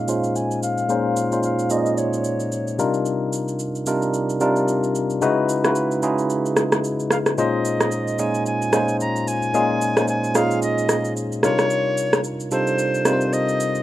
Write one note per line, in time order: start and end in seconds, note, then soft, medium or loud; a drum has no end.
0.00 0.08 A#2 medium
0.00 0.08 G#3 medium
0.00 0.08 C#4 medium
0.00 0.09 D#4 medium
0.00 0.09 F4 medium
0.00 2.80 C#5 loud
0.00 1.78 D#5 medium
0.00 0.37 F5 loud
0.08 0.75 A#2 medium
0.08 0.75 G#3 medium
0.08 0.75 C#4 medium
0.08 0.75 D#4 medium
0.08 0.75 F4 medium
0.08 0.75 C5 medium
0.08 shaker medium
0.24 shaker soft
0.36 0.62 G#5 loud
0.36 shaker medium
0.51 shaker medium
0.63 1.40 F5 loud
0.63 shaker medium
0.78 shaker soft
0.89 1.23 A#2 medium
0.89 1.23 G#3 medium
0.89 1.23 C#4 medium
0.89 1.23 D#4 medium
0.89 1.23 F4 medium
0.89 1.23 C5 loud
0.89 shaker medium
1.16 shaker medium
1.32 1.63 A#2 medium
1.32 1.64 G#3 medium
1.32 1.64 C#4 medium
1.32 1.64 D#4 medium
1.32 1.64 F4 medium
1.32 1.64 C5 medium
1.32 shaker medium
1.43 1.73 F5 medium
1.43 shaker medium
1.59 shaker medium
1.70 2.58 A#2 medium
1.70 2.58 G#3 medium
1.70 2.58 C#4 medium
1.70 2.58 D#4 medium
1.70 2.58 F4 medium
1.70 1.78 D5 medium
1.70 2.00 D#5 medium
1.70 shaker medium
1.78 2.61 D#5 medium
1.86 shaker soft
1.98 2.79 C#5 medium
1.98 shaker medium
2.13 shaker medium
2.24 shaker medium
2.40 shaker soft
2.52 shaker medium
2.67 shaker medium
2.78 3.66 C3 medium
2.78 3.66 G3 medium
2.78 3.66 D4 medium
2.78 3.66 D#4 medium
2.78 3.66 F4 medium
2.78 3.66 A#4 loud
2.78 shaker medium
2.94 shaker soft
3.06 shaker medium
3.33 shaker medium
3.48 shaker medium
3.59 shaker medium
3.75 shaker soft
3.86 4.32 C3 medium
3.86 4.32 G3 medium
3.86 4.32 D4 medium
3.86 4.32 D#4 medium
3.86 4.32 F4 medium
3.86 4.32 A#4 medium
3.86 shaker loud
4.02 shaker medium
4.14 shaker medium
4.30 shaker medium
4.40 5.07 C3 medium
4.40 5.07 G3 medium
4.40 5.07 D4 medium
4.40 5.08 D#4 medium
4.40 5.08 F4 medium
4.40 5.08 A#4 medium
4.40 shaker medium
4.56 shaker soft
4.68 shaker medium
4.84 shaker medium
4.95 shaker medium
5.10 shaker soft
5.21 5.55 C#3 loud
5.21 5.55 G#3 medium
5.21 5.55 D#4 loud
5.21 5.55 E4 loud
5.21 5.55 F#4 loud
5.21 5.55 B4 loud
5.21 shaker medium
5.49 shaker medium
5.64 5.96 C#3 medium
5.64 5.96 G#3 medium
5.64 5.96 D#4 medium
5.64 5.96 E4 medium
5.64 5.96 F#4 medium
5.64 5.96 B4 medium
5.64 cross-stick medium
5.64 shaker medium
5.75 shaker medium
5.91 shaker medium
6.02 6.90 C#3 medium
6.02 6.90 G#3 medium
6.02 6.90 D#4 medium
6.02 6.90 E4 medium
6.02 6.90 F#4 medium
6.02 6.91 G#4 medium
6.02 shaker loud
6.18 shaker soft
6.30 shaker medium
6.46 shaker medium
6.57 cross-stick medium
6.57 shaker medium
6.72 cross-stick medium
6.72 shaker medium
6.84 shaker medium
7.00 shaker medium
7.11 7.17 F5 medium
7.11 cross-stick medium
7.11 shaker medium
7.26 cross-stick medium
7.26 shaker soft
7.38 8.04 A#2 medium
7.38 8.05 G#3 medium
7.38 8.05 C#4 medium
7.38 8.05 D#4 medium
7.38 8.05 F4 medium
7.38 8.05 C5 loud
7.38 8.21 D#5 medium
7.38 shaker medium
7.65 shaker medium
7.80 cross-stick medium
7.80 shaker medium
7.92 shaker medium
8.08 shaker medium
8.19 8.64 A#2 medium
8.19 8.64 G#3 medium
8.19 8.64 C#4 medium
8.19 8.64 D#4 medium
8.19 8.64 F4 medium
8.19 8.64 D#5 medium
8.19 8.46 G#5 medium
8.19 shaker medium
8.35 shaker medium
8.46 8.97 G#5 loud
8.46 shaker medium
8.62 shaker medium
8.73 9.40 A#2 medium
8.73 9.40 G#3 medium
8.73 9.40 C#4 medium
8.73 9.40 D#4 medium
8.73 9.40 F4 medium
8.73 9.40 C5 medium
8.73 cross-stick medium
8.73 shaker medium
8.88 shaker soft
9.00 9.29 A#5 loud
9.00 shaker medium
9.16 shaker medium
9.28 10.08 G#5 loud
9.28 shaker medium
9.42 shaker soft
9.54 9.87 A#2 loud
9.54 9.87 G#3 medium
9.54 9.88 C#4 medium
9.54 9.88 D#4 medium
9.54 9.88 F4 medium
9.54 9.88 G#4 loud
9.54 shaker medium
9.81 shaker medium
9.97 10.28 A#2 medium
9.97 10.28 G#3 medium
9.97 10.29 C#4 medium
9.97 10.29 D#4 medium
9.97 10.29 F4 medium
9.97 10.29 C5 medium
9.97 cross-stick medium
9.97 shaker medium
10.08 10.37 G#5 medium
10.08 shaker medium
10.24 shaker medium
10.35 11.23 A#2 medium
10.35 11.23 G#3 medium
10.35 11.23 C#4 medium
10.35 11.23 D#4 medium
10.35 11.23 F4 medium
10.35 11.23 G#4 medium
10.35 10.62 F5 medium
10.35 cross-stick medium
10.35 shaker loud
10.51 shaker medium
10.62 11.13 D#5 medium
10.62 shaker medium
10.78 shaker medium
10.89 cross-stick medium
10.89 shaker medium
11.05 shaker medium
11.17 shaker medium
11.32 shaker medium
11.43 12.31 C3 medium
11.43 12.31 G3 medium
11.43 12.31 D4 medium
11.43 12.31 D#4 medium
11.43 12.31 F4 medium
11.43 12.31 A#4 medium
11.43 12.21 C#5 loud
11.43 cross-stick medium
11.43 shaker medium
11.59 cross-stick medium
11.59 shaker soft
11.70 shaker medium
11.97 shaker medium
12.13 cross-stick medium
12.13 shaker medium
12.24 shaker medium
12.40 shaker medium
12.51 12.96 C3 medium
12.51 12.96 G3 medium
12.51 12.97 D4 medium
12.51 12.97 D#4 medium
12.51 12.97 F4 medium
12.51 12.97 A4 medium
12.51 13.35 C5 medium
12.51 shaker loud
12.67 shaker medium
12.79 shaker medium
12.94 shaker medium
13.05 13.72 C3 medium
13.05 13.72 G3 medium
13.05 13.72 C4 medium
13.05 13.72 D#4 medium
13.05 13.73 F4 medium
13.05 13.14 A#4 medium
13.05 cross-stick medium
13.05 shaker medium
13.13 13.76 C5 medium
13.21 shaker soft
13.33 13.83 D#5 loud
13.33 shaker medium
13.49 shaker medium
13.60 shaker medium
13.75 shaker soft